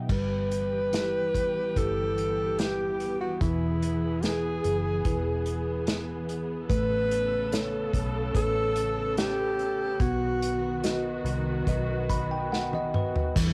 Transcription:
0.00 0.10 B2 soft
0.00 0.10 F#3 soft
0.00 0.11 B3 soft
0.00 0.11 D#4 soft
0.00 0.10 D#5 soft
0.00 0.10 E5 soft
0.00 0.10 F#5 soft
0.00 0.11 G5 soft
0.09 1.35 G1 medium
0.09 6.66 E3 medium
0.09 3.37 G3 medium
0.09 13.32 B3 soft
0.09 3.38 G4 medium
0.09 1.79 B4 medium
0.09 kick medium
0.09 crash medium
0.52 closed hi-hat medium
0.93 1.74 E4 soft
0.93 1.74 G4 soft
0.93 1.74 B4 soft
0.93 snare medium
0.93 closed hi-hat medium
1.34 1.73 A1 medium
1.34 kick medium
1.34 closed hi-hat medium
1.76 3.37 G1 medium
1.76 2.57 E4 soft
1.76 2.57 G4 soft
1.76 2.61 A4 medium
1.76 2.57 B4 soft
1.76 kick medium
1.76 closed hi-hat medium
2.18 closed hi-hat medium
2.59 3.20 G4 medium
2.59 snare medium
2.59 closed hi-hat medium
3.00 closed hi-hat soft
3.21 3.40 F#4 medium
3.41 4.60 E1 medium
3.41 6.66 E3 medium
3.41 4.24 E4 medium
3.41 6.66 G#4 medium
3.41 kick medium
3.41 closed hi-hat medium
3.82 closed hi-hat medium
4.23 5.03 E4 soft
4.23 5.88 G#4 medium
4.23 5.04 G#4 soft
4.23 5.04 B4 soft
4.23 snare medium
4.23 closed hi-hat medium
4.64 5.03 F#1 medium
4.64 closed hi-hat medium
5.05 6.66 E1 medium
5.05 5.85 E4 soft
5.05 5.86 G#4 soft
5.05 5.86 B4 soft
5.05 kick medium
5.05 closed hi-hat medium
5.46 closed hi-hat medium
5.87 snare medium
5.87 closed hi-hat medium
6.29 closed hi-hat soft
6.69 7.89 A1 medium
6.69 9.97 C#3 medium
6.69 9.95 A3 medium
6.69 9.97 A4 medium
6.69 7.89 B4 loud
6.69 kick medium
6.69 closed hi-hat medium
7.11 closed hi-hat medium
7.52 8.32 A4 soft
7.52 8.32 B4 soft
7.52 8.32 C#5 medium
7.52 snare medium
7.52 closed hi-hat medium
7.93 8.32 B1 medium
7.93 kick medium
7.93 closed hi-hat medium
8.34 9.96 A1 medium
8.34 9.14 A4 soft
8.34 9.14 A4 loud
8.34 9.14 B4 soft
8.34 9.15 C#5 soft
8.34 kick medium
8.34 closed hi-hat medium
8.76 closed hi-hat medium
9.17 10.03 G4 medium
9.17 snare medium
9.17 closed hi-hat medium
9.59 closed hi-hat soft
9.99 11.20 B1 medium
9.99 13.32 D#3 medium
9.99 13.32 B3 medium
9.99 13.32 F#4 medium
9.99 11.25 F#4 medium
9.99 kick medium
9.99 closed hi-hat medium
10.42 closed hi-hat medium
10.83 11.64 F#4 soft
10.83 11.64 B4 soft
10.83 11.65 D#5 medium
10.83 snare medium
10.83 closed hi-hat medium
11.24 11.63 C2 medium
11.24 closed hi-hat medium
11.67 13.32 B1 medium
11.67 12.49 F#4 soft
11.67 12.49 B4 soft
11.67 12.50 D#5 medium
11.67 kick medium
11.67 closed hi-hat medium
12.09 12.29 B5 medium
12.09 kick medium
12.09 closed hi-hat medium
12.31 12.50 G5 medium
12.52 12.71 F#5 medium
12.52 snare soft
12.73 12.93 D#5 medium
12.73 high tom soft
12.94 13.34 B4 medium
12.94 mid tom medium
13.16 floor tom medium
13.36 13.53 E2 medium
13.36 13.53 D3 medium
13.36 13.53 E3 medium
13.36 13.53 G3 medium
13.36 13.53 E4 medium
13.36 kick loud
13.36 crash medium
13.36 tambourine soft
13.36 downlifter medium

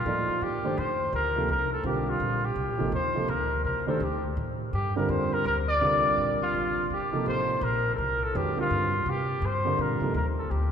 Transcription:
0.00 0.45 F4 loud
0.05 0.26 A2 medium
0.05 0.59 F3 medium
0.05 0.59 A#3 soft
0.05 0.59 D#4 medium
0.05 0.59 A4 medium
0.05 0.60 D5 medium
0.29 muted upright bass stroke soft
0.41 0.76 G2 medium
0.41 0.80 G4 medium
0.64 0.76 D#3 medium
0.64 0.76 A3 medium
0.64 0.76 D4 medium
0.64 0.76 G4 medium
0.64 0.76 C5 medium
0.78 1.12 F2 medium
0.78 1.14 C5 medium
1.13 1.48 D2 medium
1.13 1.47 A#4 medium
1.36 1.48 C3 medium
1.36 1.48 F3 medium
1.36 1.48 A#3 medium
1.36 1.48 D#4 soft
1.36 1.48 A4 medium
1.48 1.83 C2 medium
1.48 1.71 A#4 medium
1.73 1.85 A4 medium
1.83 2.19 B1 medium
1.83 2.39 D3 medium
1.83 2.39 G3 medium
1.83 2.39 C4 medium
1.83 2.39 F4 medium
1.83 2.11 G4 medium
1.83 2.40 A#4 medium
2.10 2.47 F4 medium
2.20 2.55 A#1 medium
2.45 2.94 G4 medium
2.55 2.69 C2 medium
2.69 2.80 A#1 soft
2.78 2.91 G1 medium
2.78 2.91 C3 medium
2.78 2.91 F3 medium
2.78 2.91 A#3 medium
2.78 2.91 D#4 medium
2.78 2.91 A4 medium
2.92 3.27 D#2 medium
2.92 3.31 C5 medium
3.15 3.27 C3 medium
3.15 3.27 F3 medium
3.15 3.27 A#3 medium
3.15 3.28 D#4 medium
3.15 3.28 A4 medium
3.28 3.63 D2 medium
3.28 3.65 A#4 medium
3.64 4.00 C2 medium
3.64 3.86 A#4 medium
3.87 3.99 D#3 medium
3.87 3.99 A3 medium
3.87 3.99 D4 medium
3.87 4.00 G4 medium
3.87 4.05 A4 medium
3.87 4.00 C5 medium
4.00 4.35 D2 medium
4.00 4.25 G4 medium
4.37 4.72 A2 medium
4.73 5.08 G2 medium
4.73 4.95 G4 medium
4.96 5.43 D3 medium
4.96 5.43 G3 medium
4.96 5.43 C4 medium
4.96 5.43 F4 medium
4.96 5.12 A#4 medium
4.96 5.43 A#4 medium
5.09 5.44 F2 medium
5.09 5.35 C5 medium
5.34 5.46 A#4 medium
5.45 5.80 D2 medium
5.45 5.57 A#4 medium
5.68 6.36 D5 loud
5.81 6.16 C2 medium
5.81 6.81 D3 medium
5.81 6.82 G3 medium
5.81 6.82 C4 medium
5.81 6.82 F4 medium
5.81 6.82 A#4 medium
6.17 6.38 A#1 medium
6.41 6.87 F4 medium
6.41 muted upright bass stroke soft
6.54 6.89 A1 medium
6.90 7.25 G1 medium
6.90 7.25 G4 medium
7.12 7.59 C3 medium
7.12 7.59 F3 medium
7.12 7.59 A#3 medium
7.12 7.59 D#4 medium
7.12 7.60 A4 medium
7.26 7.61 A1 medium
7.26 7.65 C5 medium
7.61 7.96 A#1 medium
7.61 7.94 A#4 medium
7.95 8.33 C2 medium
7.95 8.00 A4 medium
7.99 8.25 A#4 medium
8.24 8.38 A4 medium
8.34 8.56 F2 medium
8.34 8.54 D#3 medium
8.34 8.55 G#3 soft
8.34 8.55 C#4 medium
8.34 8.55 F#4 soft
8.34 8.58 G4 medium
8.34 8.55 B4 medium
8.56 8.88 D3 medium
8.56 8.88 G3 soft
8.56 8.89 C4 soft
8.56 8.89 F4 medium
8.56 8.89 A#4 medium
8.56 muted upright bass stroke soft
8.61 9.11 F4 loud
8.70 9.05 G2 medium
9.06 9.41 C3 medium
9.10 9.48 G4 medium
9.42 9.77 G2 medium
9.46 9.83 C5 medium
9.65 9.99 D3 medium
9.65 9.99 G3 medium
9.65 9.99 C4 medium
9.65 9.99 F4 soft
9.65 9.99 A#4 medium
9.79 10.00 A#2 medium
9.79 10.16 A#4 medium
10.00 10.13 C3 medium
10.00 10.14 F3 medium
10.00 10.14 A#3 medium
10.00 10.14 D#4 medium
10.00 10.14 A4 medium
10.00 muted upright bass stroke soft
10.14 10.49 D#2 medium
10.14 10.26 A#4 medium
10.39 10.52 A4 medium
10.51 10.72 D2 medium
10.51 10.72 G4 medium

